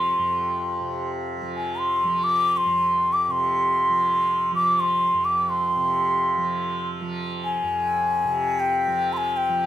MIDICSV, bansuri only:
0, 0, Header, 1, 2, 480
1, 0, Start_track
1, 0, Tempo, 500000
1, 9276, End_track
2, 0, Start_track
2, 0, Title_t, "Bansuri"
2, 0, Program_c, 0, 73
2, 0, Note_on_c, 0, 84, 77
2, 1045, Note_off_c, 0, 84, 0
2, 1499, Note_on_c, 0, 80, 69
2, 1719, Note_on_c, 0, 84, 82
2, 1733, Note_off_c, 0, 80, 0
2, 2146, Note_on_c, 0, 86, 91
2, 2160, Note_off_c, 0, 84, 0
2, 2467, Note_on_c, 0, 84, 90
2, 2481, Note_off_c, 0, 86, 0
2, 3003, Note_on_c, 0, 86, 80
2, 3017, Note_off_c, 0, 84, 0
2, 3121, Note_off_c, 0, 86, 0
2, 3121, Note_on_c, 0, 86, 64
2, 3178, Note_on_c, 0, 84, 86
2, 3192, Note_off_c, 0, 86, 0
2, 4365, Note_off_c, 0, 84, 0
2, 4371, Note_on_c, 0, 86, 81
2, 4606, Note_on_c, 0, 84, 77
2, 4620, Note_off_c, 0, 86, 0
2, 5037, Note_on_c, 0, 86, 80
2, 5051, Note_off_c, 0, 84, 0
2, 5274, Note_on_c, 0, 84, 80
2, 5289, Note_off_c, 0, 86, 0
2, 6610, Note_off_c, 0, 84, 0
2, 7144, Note_on_c, 0, 80, 93
2, 8252, Note_on_c, 0, 79, 89
2, 8266, Note_off_c, 0, 80, 0
2, 8764, Note_on_c, 0, 84, 79
2, 8778, Note_off_c, 0, 79, 0
2, 8804, Note_on_c, 0, 80, 86
2, 8814, Note_off_c, 0, 84, 0
2, 8993, Note_on_c, 0, 79, 77
2, 9007, Note_off_c, 0, 80, 0
2, 9276, Note_off_c, 0, 79, 0
2, 9276, End_track
0, 0, End_of_file